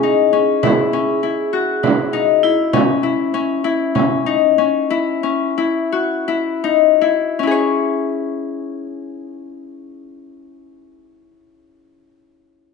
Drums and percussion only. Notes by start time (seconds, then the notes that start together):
0.03 frame drum
0.63 frame drum
0.93 frame drum
1.84 frame drum
2.14 frame drum
2.74 frame drum
3.04 frame drum
3.96 frame drum
4.27 frame drum